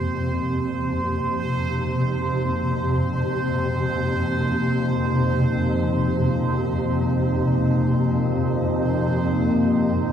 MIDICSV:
0, 0, Header, 1, 4, 480
1, 0, Start_track
1, 0, Tempo, 500000
1, 9719, End_track
2, 0, Start_track
2, 0, Title_t, "Synth texture"
2, 0, Program_c, 0, 99
2, 0, Note_on_c, 0, 72, 77
2, 9719, Note_off_c, 0, 72, 0
2, 9719, End_track
3, 0, Start_track
3, 0, Title_t, "Ambient pad"
3, 0, Program_c, 1, 92
3, 0, Note_on_c, 1, 53, 72
3, 0, Note_on_c, 1, 58, 60
3, 0, Note_on_c, 1, 63, 92
3, 0, Note_on_c, 1, 68, 67
3, 0, Note_on_c, 1, 72, 78
3, 9719, Note_off_c, 1, 53, 0
3, 9719, Note_off_c, 1, 58, 0
3, 9719, Note_off_c, 1, 63, 0
3, 9719, Note_off_c, 1, 68, 0
3, 9719, Note_off_c, 1, 72, 0
3, 9719, End_track
4, 0, Start_track
4, 0, Title_t, "Synth drone"
4, 0, Program_c, 2, 95
4, 0, Note_on_c, 2, 41, 72
4, 0, Note_on_c, 2, 48, 69
4, 9719, Note_off_c, 2, 41, 0
4, 9719, Note_off_c, 2, 48, 0
4, 9719, End_track
0, 0, End_of_file